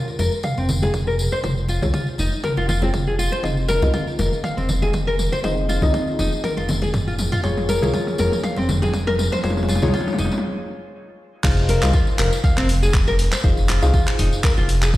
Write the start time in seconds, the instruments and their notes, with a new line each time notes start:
Already playing: synth stab F4 G#4 C#5
0.08 tambourine
0.19 analog synth bass F1, nylon-string guitar A#4, tambourine, muted conga, high conga
0.32 tambourine
0.43 nylon-string guitar F5, kick, mid tom, tambourine
0.57 analog synth bass F1, nylon-string guitar C4, tambourine, muted conga
0.69 tambourine, high conga, low conga
0.82 nylon-string guitar G#4, tambourine, high conga
0.94 analog synth bass F1, kick, mid tom, tambourine, muted conga
1.07 nylon-string guitar A#4, tambourine
1.19 tambourine
1.32 nylon-string guitar C5, tambourine, muted conga
1.44 analog synth bass F1, synth stab F4 G#4 C#5, nylon-string guitar C5, kick, mid tom, tambourine, high conga
1.57 tambourine
1.68 nylon-string guitar F4, tambourine, muted conga
1.82 analog synth bass C2, synth stab F4 G#4 C#5, tambourine, high conga, low conga
1.94 nylon-string guitar F4, kick, mid tom, tambourine
2.07 tambourine
2.18 analog synth bass F1, nylon-string guitar D#4, tambourine, muted conga, high conga
2.32 tambourine
2.44 nylon-string guitar A#4, kick, mid tom, tambourine
2.57 analog synth bass F1, nylon-string guitar F4, tambourine, muted conga
2.69 nylon-string guitar F4, tambourine, high conga, low conga
2.82 nylon-string guitar C4, synth stab F4 G#4 C#5, tambourine, high conga
2.94 analog synth bass F1, kick, mid tom, tambourine, muted conga
3.07 nylon-string guitar G#4, tambourine
3.19 nylon-string guitar F4, tambourine
3.32 nylon-string guitar C5, tambourine, muted conga
3.43 analog synth bass F1, synth stab C4 D#4 F4 G#4 D#5, nylon-string guitar F4, kick, mid tom, tambourine, high conga
3.57 tambourine
3.68 nylon-string guitar A#4, mid tom, tambourine, muted conga
3.82 analog synth bass C2, synth stab C4 D#4 F4 G#4 D#5, tambourine, high conga, low conga
3.94 nylon-string guitar F4, kick, mid tom, tambourine
4.07 tambourine
4.19 analog synth bass F1, nylon-string guitar A#4, mid tom, tambourine, muted conga, high conga
4.33 tambourine
4.44 nylon-string guitar F5, kick, mid tom, tambourine
4.57 analog synth bass F1, nylon-string guitar C4, tambourine, muted conga
4.69 mid tom, tambourine, high conga, low conga
4.82 nylon-string guitar G#4, tambourine, high conga
4.93 analog synth bass F1, kick, mid tom, tambourine, muted conga
5.07 nylon-string guitar A#4, tambourine
5.19 mid tom, tambourine
5.32 nylon-string guitar C5, tambourine, muted conga
5.44 analog synth bass F1, synth stab C4 D#4 F4 G#4 D#5, nylon-string guitar C5, kick, mid tom, tambourine, high conga
5.57 tambourine
5.69 nylon-string guitar F4, mid tom, tambourine, muted conga
5.82 analog synth bass C2, synth stab C4 D#4 F4 G#4 D#5, tambourine, high conga, low conga
5.94 nylon-string guitar F4, kick, mid tom, tambourine
6.07 tambourine
6.19 analog synth bass F1, nylon-string guitar D#4, mid tom, tambourine, muted conga, high conga
6.32 tambourine
6.44 nylon-string guitar A#4, kick, mid tom, tambourine
6.57 analog synth bass F1, nylon-string guitar F4, tambourine, muted conga
6.68 mid tom, tambourine, high conga, low conga
6.82 nylon-string guitar G#4, tambourine, high conga
6.94 analog synth bass F1, kick, mid tom, tambourine, muted conga
7.07 nylon-string guitar F4, tambourine
7.19 mid tom, tambourine
7.32 nylon-string guitar F4, mid tom, tambourine, muted conga
7.43 analog synth bass F1, nylon-string guitar F4, synth stab F4 G#4 C#5, kick, mid tom, tambourine, high conga
7.57 mid tom, tambourine
7.69 nylon-string guitar A#4, mid tom, tambourine, muted conga
7.82 analog synth bass C2, synth stab F4 G#4 C#5, mid tom, tambourine, high conga, low conga
7.94 nylon-string guitar F4, kick, mid tom, tambourine
8.07 mid tom, tambourine
8.18 analog synth bass F1, nylon-string guitar A#4, mid tom, tambourine, muted conga, high conga
8.32 mid tom, tambourine
8.44 nylon-string guitar F5, kick, mid tom, tambourine
8.57 analog synth bass F1, nylon-string guitar C4, mid tom, tambourine, muted conga
8.69 mid tom, tambourine, high conga, low conga
8.82 nylon-string guitar G#4, mid tom, tambourine, high conga
8.94 analog synth bass F1, kick, mid tom, tambourine, muted conga
9.07 nylon-string guitar A#4, mid tom, tambourine
9.19 mid tom, tambourine
9.32 nylon-string guitar C5, mid tom, tambourine, muted conga
9.44 analog synth bass F1, synth stab F4 G#4 C#5, nylon-string guitar C5, kick, mid tom, tambourine, high conga
9.50 mid tom
9.57 mid tom, tambourine
9.63 mid tom
9.68 nylon-string guitar F4, mid tom, tambourine, muted conga
9.75 mid tom
9.82 analog synth bass C2, synth stab F4 G#4 C#5, mid tom, tambourine, high conga, low conga
9.88 mid tom
9.94 nylon-string guitar F4, kick, mid tom, tambourine
10.01 mid tom
10.07 mid tom, tambourine
10.13 mid tom
10.18 analog synth bass F1, nylon-string guitar D#4, kick, mid tom, tambourine, muted conga, high conga
10.25 mid tom
10.31 mid tom, tambourine
10.38 mid tom
11.44 analog synth bass F1, synth stab D#4 F4 G#4 C5 F5, nylon-string guitar F4, kick, clap, crash, tambourine
11.57 tambourine
11.69 nylon-string guitar A#4, open hi-hat
11.82 analog synth bass C2, synth stab D#4 F4 G#4 C5 F5, clap, tambourine
11.93 nylon-string guitar F4, kick, tambourine
12.07 tambourine
12.19 analog synth bass F1, nylon-string guitar A#4, clap, open hi-hat
12.33 tambourine
12.44 nylon-string guitar F5, kick, tambourine
12.57 analog synth bass F1, nylon-string guitar C4, clap, tambourine
12.69 open hi-hat
12.82 nylon-string guitar G#4, tambourine
12.94 analog synth bass F1, kick, clap, tambourine
13.07 nylon-string guitar A#4, tambourine
13.19 open hi-hat
13.32 nylon-string guitar C5, clap, tambourine
13.44 analog synth bass F1, synth stab D#4 F4 G#4 C5 F5, nylon-string guitar C5, kick
13.57 tambourine
13.69 nylon-string guitar F4, clap, open hi-hat
13.82 analog synth bass C2, synth stab D#4 F4 G#4 C5 F5, tambourine
13.93 nylon-string guitar F4, kick, tambourine
14.07 clap, tambourine
14.19 analog synth bass F1, nylon-string guitar D#4, mid tom, open hi-hat
14.33 tambourine
14.44 nylon-string guitar A#4, kick, clap, tambourine
14.57 analog synth bass F1, nylon-string guitar F4, tambourine
14.69 open hi-hat
14.82 nylon-string guitar G#4, clap, tambourine
14.94 analog synth bass F1, kick, tambourine